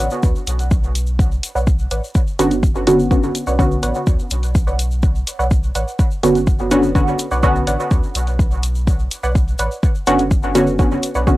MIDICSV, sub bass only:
0, 0, Header, 1, 2, 480
1, 0, Start_track
1, 0, Key_signature, 2, "minor"
1, 0, Tempo, 480000
1, 1192, Time_signature, 4, 2, 24, 8
1, 11371, End_track
2, 0, Start_track
2, 0, Title_t, "Sub bass"
2, 0, Program_c, 0, 38
2, 230, Note_on_c, 0, 38, 90
2, 322, Note_off_c, 0, 38, 0
2, 470, Note_on_c, 0, 35, 100
2, 1384, Note_off_c, 0, 35, 0
2, 1551, Note_on_c, 0, 35, 96
2, 1864, Note_off_c, 0, 35, 0
2, 1911, Note_on_c, 0, 33, 99
2, 2002, Note_off_c, 0, 33, 0
2, 2390, Note_on_c, 0, 30, 82
2, 3304, Note_off_c, 0, 30, 0
2, 3471, Note_on_c, 0, 35, 100
2, 3784, Note_off_c, 0, 35, 0
2, 3831, Note_on_c, 0, 33, 101
2, 3922, Note_off_c, 0, 33, 0
2, 4070, Note_on_c, 0, 38, 88
2, 4162, Note_off_c, 0, 38, 0
2, 4310, Note_on_c, 0, 35, 102
2, 5224, Note_off_c, 0, 35, 0
2, 5391, Note_on_c, 0, 35, 101
2, 5704, Note_off_c, 0, 35, 0
2, 5750, Note_on_c, 0, 33, 101
2, 5842, Note_off_c, 0, 33, 0
2, 6231, Note_on_c, 0, 30, 83
2, 7144, Note_off_c, 0, 30, 0
2, 7311, Note_on_c, 0, 35, 99
2, 7624, Note_off_c, 0, 35, 0
2, 7671, Note_on_c, 0, 33, 101
2, 7762, Note_off_c, 0, 33, 0
2, 7911, Note_on_c, 0, 38, 93
2, 8002, Note_off_c, 0, 38, 0
2, 8151, Note_on_c, 0, 35, 100
2, 9064, Note_off_c, 0, 35, 0
2, 9231, Note_on_c, 0, 35, 101
2, 9544, Note_off_c, 0, 35, 0
2, 9591, Note_on_c, 0, 33, 99
2, 9682, Note_off_c, 0, 33, 0
2, 10071, Note_on_c, 0, 30, 86
2, 10984, Note_off_c, 0, 30, 0
2, 11151, Note_on_c, 0, 35, 99
2, 11371, Note_off_c, 0, 35, 0
2, 11371, End_track
0, 0, End_of_file